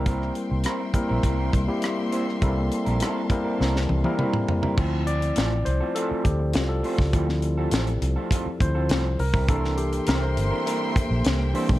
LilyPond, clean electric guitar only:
\new Staff \with { instrumentName = "Clean electric guitar" } { \time 4/4 \key d \minor \tempo 4 = 102 <g c' e' bes'>8 r8 <g c' e' bes'>16 r8 <g c' e' bes'>16 <g c' e' bes'>8 r4 <g c' e' c''>16 r16 | <g c' e' bes'>16 r8 <g c' e' bes'>16 <g c' e' bes'>16 r8 <g c' e' bes'>16 <g c' e' bes'>16 r8 <g c' e' bes'>16 <g c' e' bes'>16 r8 <g c' e' bes'>16 | <a c' f' a'>8 r8 <a c' f' a'>16 r8 <a c' f' a'>16 <a c' f' a'>8 r4 <a c' f' c''>16 r16 | <a c' f' a'>16 r8 <a c' f' a'>16 <a c' f' a'>16 r8 <a c' f' a'>16 <a c' f' a'>16 r8 <a c' f' a'>16 <a c' f' a'>16 r8 <g c' e' bes'>16 |
<g c' e' bes'>8 r8 <g c' e' bes'>16 r8 <g c' e' bes'>16 <g c' e' bes'>8 r4 <g c' e' c''>16 r16 | }